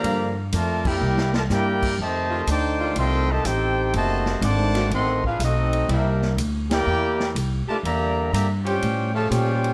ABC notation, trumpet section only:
X:1
M:4/4
L:1/8
Q:"Swing" 1/4=123
K:Flyd
V:1 name="Trumpet section"
[Gdf_b] z [F_Bda] [EBdg]2 [FBda] [EBdg]2 | [Gc_ea]2 [cgad']2 [Aegc'] [Gcea] [_EAcg]2 | [^Fc^da]2 [c^fa=d']2 [A^dfc'] [=D_AB=f] [C^F=A^d]2 | [DG_Be]2 z [EBdg]3 z [FBda] |
[Gde_b]2 [Gdeb] [Fc_dg]2 [G^c^ea] [^E^Bcg]2 |]